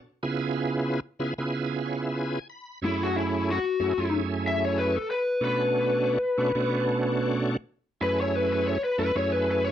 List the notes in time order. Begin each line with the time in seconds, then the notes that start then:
0.23 C#3 B3 E4 F4 G#4
1.19 C#3 B3 E4 F4 G#4
1.38 C#3 B3 E4 F4 G#4
1.86 C#5
2.03 E5
2.18 G#5
2.50 B5
2.82 F#2 A3 C#4 E4 G#4
3.03 F#4
3.17 E4
3.51 F#4
3.80 F#2 A3 C#4 E4 G#4
3.97 F#2 A3 C#4 E4 G#4
4.47 E5
4.65 C#5
4.78 B4
4.96 A4
5.11 B4
5.40 B2 A3 C#4 D4 F#4
5.45 B4
6.37 B2 A3 C#4 D4 F#4
6.55 B2 A3 C#4 D4 F#4
8.01 F#2 A3 C#4 E4 G#4 B4
8.21 C#5
8.36 B4
8.53 B4
8.67 C#5
8.84 B4
8.98 F#2 A3 C#4 E4 A4 B4
9.15 F#2 A3 C#4 E4 G#4 C#5
9.32 B4
9.51 B4
9.64 C#5